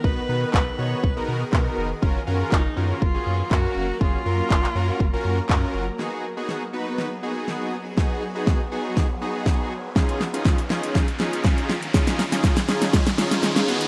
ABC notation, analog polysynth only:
X:1
M:4/4
L:1/16
Q:1/4=121
K:G#dor
V:1 name="Analog polysynth"
[B,DFB] z [B,DFB]3 z [B,DFc]2 z [B,DFA]2 z [B,DFA]3 z | [CEFA] z [CEFA]3 z [CEFA]2 z [CEFG]2 z [CFAe]3 z | [CEFG] z [F,CEA]3 z [CEFA]2 z [CEFA]2 z [CEFA]3 z | [B,DFG]2 z [B,DFG]2 z [B,DFB]3 z [B,DFG]4 z2 |
[B,DFG]2 z [B,DFG]2 z [B,DFG]3 z [B,DFG]4 z2 | [CDEG]2 z [CDEG]2 z [CDEG]3 z [CDEG]4 z2 | [CDEG]2 z [CDEG]2 z [CDEG]3 z [CDEG]4 [B,DFG]2 |]